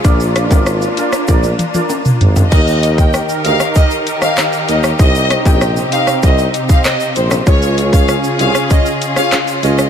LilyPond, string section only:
\new Staff \with { instrumentName = "String section" } { \time 4/4 \key ees \major \tempo 4 = 97 << { bes1 | <ees ees' bes'>1 | <c c'>1 | <des des' aes'>1 | } \\ { <d' f'>1 | g'1~ | g'1 | f'1 | } >> }